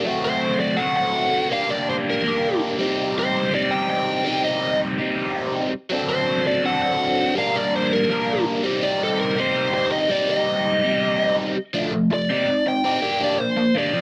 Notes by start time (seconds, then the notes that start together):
0.05 F#3 A3 C4 F#4
0.25 C5
0.60 D5
0.77 F#3 A3 C4 F#5
0.81 F#4
0.97 F#5
1.50 A#3 D4 F5
1.54 G4
1.70 D5
1.90 C5
2.10 A#4
2.24 A#3 D4
2.28 G4
2.79 G3 C4 D#4
2.83 G4
3.19 C5
3.51 G3 C4 D#4 G4 D5
3.71 G5
3.90 G5
4.25 G3 C4 D#4 G4
4.45 D#5
4.98 G3 C4 D#4 G4
5.90 F#3 C4 D4 A4
6.09 C5
6.47 D5
6.63 F#3 C4 D4 A4 F#5
6.82 F#5
7.35 G3 A#3 D4 A#4 F5
7.56 D5
7.76 C5
7.93 A#4
8.09 G3 A#3 D4 A#4
8.63 G3 C4 D#4 G4
8.83 D5
9.03 A4
9.20 A#4
9.36 C4 D#4 G4 C5
9.41 G3
9.74 C5
9.92 D#5
10.09 G3 C4 D#4 G4 D5
10.30 D#5
10.82 C4 D#4 G4
10.86 G3
11.74 F3 A3 D4
11.92 F3 A3
12.11 F3 A3 D5
12.29 C4 D#4 G4
12.48 C4 D#4
12.66 C4 D#4 G5
12.84 C4 D#4 G4
13.02 A#3 D4 G4
13.20 A#3 D4 G4 D5
13.39 A#3 D4 C5
13.57 A#3 D4
13.76 A#3 D4 G4 D5
13.94 F3 C4 F4